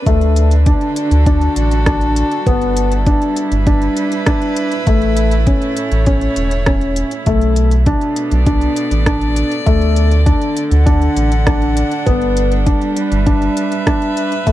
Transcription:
0.00 4.87 D4 medium
0.00 1.02 B4 medium
0.06 0.73 D2 loud
0.06 2.47 D3 medium
0.06 0.51 A3 medium
0.06 kick loud
0.06 closed hi-hat soft
0.21 closed hi-hat soft
0.36 closed hi-hat medium
0.51 closed hi-hat soft
0.66 1.11 D4 medium
0.66 kick loud
0.66 closed hi-hat soft
0.71 3.43 A4 medium
0.81 closed hi-hat soft
0.89 3.43 F#4 medium
0.96 closed hi-hat medium
1.11 1.48 D2 loud
1.11 closed hi-hat soft
1.26 1.71 D4 medium
1.26 kick medium
1.26 closed hi-hat soft
1.41 closed hi-hat soft
1.56 2.23 A1 medium
1.56 closed hi-hat medium
1.71 closed hi-hat soft
1.86 2.31 D4 medium
1.86 kick loud
1.86 cross-stick medium
1.86 closed hi-hat soft
2.01 closed hi-hat soft
2.16 closed hi-hat medium
2.31 closed hi-hat soft
2.46 3.13 G1 loud
2.46 4.86 G3 medium
2.46 2.91 B3 medium
2.46 kick loud
2.46 closed hi-hat soft
2.62 closed hi-hat soft
2.77 closed hi-hat medium
2.92 8.22 E4 medium
2.92 closed hi-hat soft
3.06 3.51 D4 medium
3.06 kick loud
3.06 closed hi-hat soft
3.22 closed hi-hat soft
3.37 closed hi-hat medium
3.52 3.89 G1 loud
3.52 5.75 B4 medium
3.52 closed hi-hat soft
3.67 4.11 D4 medium
3.67 kick loud
3.67 closed hi-hat soft
3.82 closed hi-hat soft
3.97 closed hi-hat medium
4.12 closed hi-hat soft
4.26 4.71 D4 medium
4.26 kick loud
4.26 cross-stick medium
4.26 closed hi-hat soft
4.42 closed hi-hat soft
4.56 closed hi-hat medium
4.72 closed hi-hat soft
4.87 5.53 A1 loud
4.87 7.27 A2 medium
4.87 5.31 A3 medium
4.87 kick loud
4.87 closed hi-hat soft
5.02 closed hi-hat soft
5.07 7.27 A3 medium
5.17 closed hi-hat medium
5.31 closed hi-hat soft
5.47 5.91 C#4 medium
5.47 kick loud
5.47 closed hi-hat soft
5.62 closed hi-hat soft
5.77 closed hi-hat medium
5.83 7.27 C#5 medium
5.92 6.29 A1 loud
5.92 closed hi-hat soft
6.06 6.51 C#4 medium
6.06 kick loud
6.06 closed hi-hat soft
6.21 closed hi-hat soft
6.36 7.03 E1 medium
6.36 closed hi-hat medium
6.51 closed hi-hat soft
6.66 7.11 C#4 medium
6.66 kick loud
6.66 cross-stick medium
6.66 closed hi-hat soft
6.81 closed hi-hat soft
6.96 closed hi-hat medium
7.11 closed hi-hat soft
7.26 7.93 B1 loud
7.26 9.67 B2 medium
7.26 7.71 A3 medium
7.26 kick loud
7.26 closed hi-hat soft
7.41 closed hi-hat soft
7.56 closed hi-hat medium
7.71 10.63 B3 medium
7.71 closed hi-hat soft
7.86 8.31 D4 medium
7.86 13.03 A4 medium
7.86 kick loud
7.86 closed hi-hat soft
8.01 closed hi-hat soft
8.16 closed hi-hat medium
8.31 8.69 B1 loud
8.31 10.63 D5 medium
8.31 closed hi-hat soft
8.46 8.91 D4 medium
8.46 kick loud
8.46 closed hi-hat soft
8.61 closed hi-hat soft
8.76 closed hi-hat medium
8.91 9.43 A1 loud
8.91 closed hi-hat soft
9.06 9.51 D4 medium
9.06 kick loud
9.06 cross-stick medium
9.06 closed hi-hat soft
9.21 closed hi-hat soft
9.36 closed hi-hat medium
9.52 closed hi-hat soft
9.66 10.33 D2 loud
9.66 12.07 D3 medium
9.66 10.11 A3 medium
9.66 kick loud
9.66 closed hi-hat soft
9.82 closed hi-hat soft
9.96 closed hi-hat medium
10.11 closed hi-hat soft
10.25 14.47 D4 medium
10.25 10.70 D4 medium
10.25 kick loud
10.25 closed hi-hat soft
10.42 closed hi-hat soft
10.57 closed hi-hat medium
10.71 11.08 D2 loud
10.71 12.80 F#5 medium
10.71 closed hi-hat soft
10.86 11.30 D4 medium
10.86 kick loud
10.86 closed hi-hat soft
11.02 closed hi-hat soft
11.17 11.83 A1 medium
11.17 closed hi-hat medium
11.32 closed hi-hat soft
11.46 11.91 D4 medium
11.46 kick loud
11.46 cross-stick medium
11.46 closed hi-hat soft
11.62 closed hi-hat soft
11.77 closed hi-hat medium
11.91 closed hi-hat soft
12.07 12.73 G1 loud
12.07 14.47 G3 medium
12.07 12.51 B3 loud
12.07 kick loud
12.07 closed hi-hat soft
12.22 closed hi-hat soft
12.37 closed hi-hat medium
12.52 closed hi-hat soft
12.66 13.11 D4 medium
12.66 kick loud
12.66 closed hi-hat soft
12.82 closed hi-hat soft
12.97 closed hi-hat medium
13.02 14.52 B4 medium
13.12 13.49 G1 loud
13.12 14.52 E5 medium
13.12 closed hi-hat soft
13.26 13.71 D4 medium
13.26 kick medium
13.26 closed hi-hat soft
13.42 closed hi-hat soft
13.57 closed hi-hat medium
13.72 closed hi-hat soft
13.87 14.31 D4 medium
13.87 kick loud
13.87 cross-stick medium
13.87 closed hi-hat soft
14.02 closed hi-hat soft
14.17 closed hi-hat medium
14.32 closed hi-hat soft
14.47 14.52 A1 loud
14.47 14.52 A2 medium
14.47 14.52 A3 medium
14.47 kick loud
14.47 closed hi-hat soft

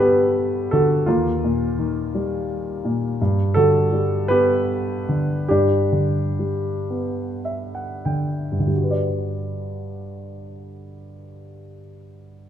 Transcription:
0.00 1.03 G2 soft
0.00 0.67 D3 soft
0.00 1.03 G3 soft
0.00 1.04 B3 soft
0.00 0.73 F#4 soft
0.00 0.67 G4 medium
0.00 0.71 A4 medium
0.00 0.67 B4 medium
0.71 1.06 D3 soft
0.71 1.05 F#4 soft
0.71 1.07 A4 medium
1.06 3.17 D#2 soft
1.06 2.46 A#3 soft
1.06 2.45 F4 medium
1.44 2.82 A#2 soft
1.79 3.17 D#3 soft
2.15 3.17 G3 soft
2.85 3.19 A#2 soft
3.21 5.46 G2 soft
3.54 5.04 D3 soft
3.54 4.26 F#4 soft
3.54 4.31 A4 medium
3.93 5.45 G3 soft
4.28 5.46 B3 soft
4.28 5.04 G4 medium
4.28 5.03 B4 medium
5.09 5.48 D3 soft
5.48 8.50 G2 soft
5.48 7.42 D4 soft
5.48 7.41 G4 medium
5.92 8.01 D3 soft
6.39 8.66 G3 soft
6.90 8.67 B3 soft
7.45 7.72 E5 soft
7.75 8.03 F#5 soft
8.05 8.58 D3 soft
8.05 8.67 G5 soft
8.52 11.56 G2 soft
8.60 11.64 D3 soft
8.67 11.72 G3 soft
8.75 11.80 F#4 soft
8.83 11.88 B4 soft
8.91 11.95 D5 soft

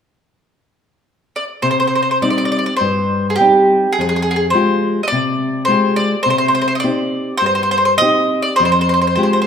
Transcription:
1.36 1.43 D5 soft
1.62 2.20 C3 soft
1.62 1.70 C5 medium
1.71 1.79 C5 soft
1.80 1.86 C5 soft
1.87 1.94 C5 soft
1.96 2.01 C5 soft
2.02 2.09 C5 soft
2.11 2.17 C5 soft
2.22 2.69 G3 soft
2.22 2.69 C4 soft
2.22 2.69 D#4 soft
2.22 2.29 D5 soft
2.30 2.37 D5 soft
2.38 2.44 D5 soft
2.45 2.51 D5 soft
2.52 2.57 D5 soft
2.59 2.65 D5 soft
2.66 2.75 D5 soft
2.77 3.26 C5 medium
2.81 3.37 G2 soft
3.30 3.35 G#4 soft
3.36 3.91 G4 medium
3.40 3.86 G3 soft
3.40 3.85 C4 soft
3.40 3.86 D#4 soft
3.93 4.00 G#4 medium
3.99 4.53 F2 soft
3.99 4.08 G#4 soft
4.09 4.15 G#4 soft
4.16 4.21 G#4 soft
4.22 4.30 G#4 soft
4.31 4.35 G#4 soft
4.36 4.45 G#4 soft
4.50 5.00 G#3 soft
4.50 4.99 C5 medium
4.55 5.00 F4 soft
4.55 5.00 G4 soft
5.03 5.07 D#5 soft
5.08 5.65 D5 medium
5.12 5.67 C3 soft
5.65 6.14 G#3 soft
5.65 6.15 F4 soft
5.65 5.95 C5 medium
5.70 6.15 G4 soft
5.96 6.22 D5 medium
6.23 6.82 C3 soft
6.23 6.29 C5 medium
6.30 6.37 C5 medium
6.38 6.47 C5 medium
6.48 6.54 C5 soft
6.55 6.60 C5 medium
6.62 6.67 C5 soft
6.68 6.75 C5 medium
6.75 6.79 D#5 soft
6.80 7.30 C4 soft
6.80 7.35 D5 medium
6.84 7.30 D#4 soft
6.84 7.30 G4 soft
7.37 7.98 G2 soft
7.37 7.45 C5 medium
7.46 7.54 C5 medium
7.55 7.62 C5 medium
7.63 7.70 C5 soft
7.71 7.76 C5 medium
7.78 7.84 C5 soft
7.85 7.93 C5 medium
7.98 8.47 C4 soft
7.98 8.48 D#4 soft
7.98 8.47 G4 soft
7.98 8.40 D#5 medium
8.42 8.56 D5 medium
8.56 9.16 F2 medium
8.56 8.64 C5 medium
8.65 8.71 C5 medium
8.72 8.80 C5 soft
8.81 8.88 C5 soft
8.89 8.93 C5 soft
8.94 9.00 C5 soft
9.01 9.06 C5 soft
9.07 9.14 C5 soft
9.16 9.47 G#3 soft
9.16 9.47 F4 soft
9.16 9.47 G4 soft
9.16 9.22 C5 soft
9.23 9.32 C5 soft
9.33 9.40 C5 soft
9.42 9.47 C5 soft

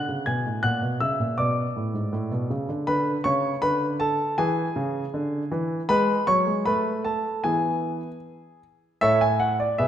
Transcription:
0.00 0.25 F#5 medium
0.00 0.27 F#6 medium
0.09 0.26 C#3 medium
0.26 0.45 B2 medium
0.26 0.62 G#5 medium
0.26 0.49 G#6 medium
0.46 0.63 A2 medium
0.63 0.82 A#2 medium
0.63 0.99 F#5 medium
0.63 1.01 F#6 medium
0.82 1.00 B2 medium
1.00 1.19 C#3 medium
1.00 1.36 E5 medium
1.00 1.38 E6 medium
1.20 1.38 A#2 medium
1.38 1.66 B2 medium
1.38 2.47 D5 medium
1.38 2.46 D6 medium
1.76 1.94 A2 medium
1.94 2.12 G#2 medium
2.13 2.31 A2 medium
2.32 2.50 B2 medium
2.50 2.68 C#3 medium
2.69 2.86 D3 medium
2.87 3.15 D3 medium
2.87 3.23 B4 medium
2.87 3.10 B5 loud
3.24 3.53 C#3 medium
3.24 3.61 C#5 medium
3.24 3.63 C#6 loud
3.62 4.17 D3 medium
3.62 3.98 B4 medium
3.62 3.85 B5 loud
4.00 4.36 A4 medium
4.00 4.34 A5 loud
4.38 4.66 E3 medium
4.38 5.48 G#4 medium
4.38 5.48 G#5 loud
4.76 5.03 C#3 medium
5.14 5.41 D3 medium
5.51 5.79 E3 medium
5.89 6.17 G#3 medium
5.89 6.26 B4 medium
5.89 6.28 B5 loud
6.27 6.46 F#3 medium
6.27 6.64 C#5 medium
6.27 6.62 C#6 loud
6.47 6.65 G#3 medium
6.66 7.23 A3 medium
6.66 7.03 B4 medium
6.66 7.01 B5 loud
7.05 7.42 A4 medium
7.05 7.40 A5 medium
7.44 8.00 E3 medium
7.44 8.07 B3 medium
7.44 8.07 E4 soft
7.44 8.59 G#4 medium
7.44 8.15 G#5 medium
9.01 9.63 A2 medium
9.01 9.20 A4 medium
9.01 9.20 C#5 medium
9.01 9.21 E5 loud
9.21 9.40 G#5 medium
9.40 9.59 F#5 medium
9.60 9.79 D5 medium
9.78 9.88 B2 medium
9.78 9.88 G#4 medium
9.78 9.88 B4 medium
9.78 9.88 E5 medium

